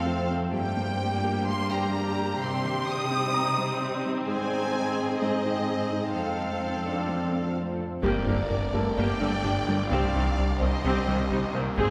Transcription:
Already playing: F2 A3 C4 F4 A4 C5 F5
0.06 F4
0.30 C4
0.53 G2 G3 A#3 D4 G4 D5 G5
0.77 A#3
1.24 G4
1.48 G3 C6
1.70 D4 G4 G5 A#5
1.95 G4
2.18 D4
2.41 C3 C4 D#4 C5 C6
2.64 D#3
2.88 D#6
3.12 C4
3.34 C3 A#5
3.58 G3
3.82 C4
4.06 G3
4.27 G#2 G#3 G#4 G#5
4.51 C4
4.98 G#4
5.21 G#3 D#4 D#5
5.46 D#4
5.70 G#4
5.93 D#4
6.15 F2 F3 A3 C4 F4 A4 F5
6.40 A3
6.85 D4 F4 D5
7.09 F3
7.33 C4
7.57 F4
7.81 C4
8.03 G1 G2 G3 A#3 D4 G4 A#4 D5, taiko, impact
8.27 G1 G2 D3 A#3
8.51 G2
8.74 G1 G2 D3 A3 A#3 G4 A4
8.97 G1 G2 G3 A#3 G4 D5 G5
9.20 G1 G2 D3 G3 A#3 D4
9.44 G1 G2 G3 D4 G4
9.68 G1 G2 D3 G3 A#3 D4
9.90 C2 C3 C4 G4 C5 D5 F5
10.14 C2 C3 D#3 C4
10.39 C2
10.60 C2 C3 D#3 C4 C5 D#5
10.84 C2 C3 C4 G4
11.07 C2 C3 D#3 G3 C4
11.30 C2 C3 G3 C4 D#4
11.53 C2 C3 D#3 G3 A#3 C4 A#4
11.76 G#1 G#2 G#3 C4 G#4 C5 D#5, taiko

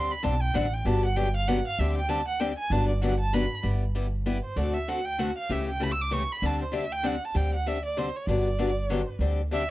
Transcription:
Already playing: D2 D3 G3 C4 D4 G4 C6
0.12 B5
0.23 B1 D3 G3 C4 D4 G4 A5
0.41 G5
0.54 A1 D3 G3 C4 D4 G4 F#5
0.73 G5
0.85 G1 D3 F#3 B3 D4 G4 A5
1.05 F#5
1.16 D3 F#3 B3 D4 G4 G5
1.36 F5
1.48 D3 F#3 B3 D4 G4 F#5
1.67 F5
1.79 D2 D3 G3 C4 D4 G4 E5
1.98 G5
2.08 D3 G3 C4 D4 G4 A5
2.28 F#5
2.40 D3 G3 C4 D4 G4 G5
2.59 G#5
2.70 G1 D3 F#3 B3 D4 G4 A5
2.89 D5
3.02 D3 F#3 B3 D4 G4 F#5
3.20 A5
3.33 D3 F#3 B3 D4 G4 B5
3.63 G1 G3 B3 E4 G4
3.95 G3 B3 E4 G4
4.26 G3 B3 E4 G4 B4
4.45 C5
4.56 D2 D3 A3 C4 F#4 A4 D5
4.74 E5
4.88 D3 A3 C4 F#4 A4 F#5
5.05 G5
5.18 D3 A3 C4 F#4 A4 F#5
5.38 F5
5.49 C#2 C#3 E3 A3 C#4 G4 E5
5.70 G5
5.80 C#3 E3 A3 C#4 G4 B5
5.92 E6
6.02 D6
6.11 C#3 E3 A3 C#4 G4 C#6
6.32 B5
6.42 D2 D3 G3 C4 D4 G4 A5
6.63 C5
6.72 D3 G3 C4 D4 G4 E5
6.92 G5
7.03 D3 G3 C4 D4 G4 F#5
7.25 A5
7.34 D2 D3 G3 C4 D4 G4 G5
7.55 F#5
7.66 D3 G3 C4 D4 G4 E5
7.85 D5
7.97 D3 G3 C4 D4 G4 C5
8.16 C#5
8.27 G1 D3 F#3 B3 D4 G4 D5
8.59 D3 F#3 B3 D4 G4
8.90 D3 F#3 B3 D4 G4
9.19 D2 D3 G3 C4 D4 G4
9.51 D3 G3 C4 D4 G4 E5

